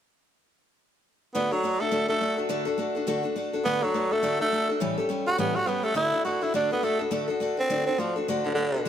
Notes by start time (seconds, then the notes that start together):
1.34 D3 A3 B3 D4 F#4 A4
1.51 F#3 D4 F#4 A4
1.63 A3 D4 F#4 A4
1.80 A3 D4 F#4 A4
1.91 D3 A3 D4 F#4 A4
2.08 A3 D4 F#4 A4
2.20 A3 D4 F#4 A4
2.37 D4 F#4 A4
2.49 D3 A3 D4 F#4 A4
2.65 D4 F#4 A4
2.78 A3 D4 F#4 A4
2.95 D4 F#4 A4
3.07 D3 A3 D4 F#4 A4
3.23 D4 F#4 A4
3.36 A3 D4 F#4 A4
3.53 D4 F#4 A4
3.65 D3 A3 B3 D4 F#4 A4
3.82 F#3 D4 F#4 A4
3.94 A3 D4 F#4 A4
4.11 A3 D4 F#4 A4
4.23 D3 A3 D4 F#4 A4
4.39 A3 D4 F#4 A4
4.52 A3 D4 F#4 A4
4.69 D4 F#4 A4
4.80 A2 E3 G3 C#4 G4 A4
4.98 G3 C#4 G4 A4
5.09 G3 C#4 G4 A4
5.26 G3 C#4 F#4 G4 A4
5.38 A2 E3 G3 B3 C#4 G4 A4
5.56 G3 C#4 F#4 G4 A4
5.66 G3 B3 C#4 G4 A4
5.83 G3 A3 C#4 G4 A4
5.95 D3 A3 D4 E4 F#4 A4
6.12 D4 F#4 A4
6.25 A3 D4 F#4 A4
6.41 D4 E4 F#4 A4
6.54 D3 A3 D4 F#4 A4
6.71 B3 D4 F#4 A4
6.83 A3 D4 F#4 A4
6.99 D4 F#4 A4
7.11 D3 A3 D4 F#4 A4
7.28 D4 F#4 A4
7.40 A3 D4 F#4 A4
7.57 C4 D4 F#4 A4
7.70 D3 A3 D4 F#4 A4
7.86 C4 D4 F#4 A4
7.98 F3 A3 D4 F#4 A4
8.16 D4 F#4 A4
8.28 D3 A3 D4 F#4 A4
8.44 D3 D4 F#4 A4
8.54 D3 A3 D4 F#4 A4
8.74 D4 F#4 A4
8.85 D3 A3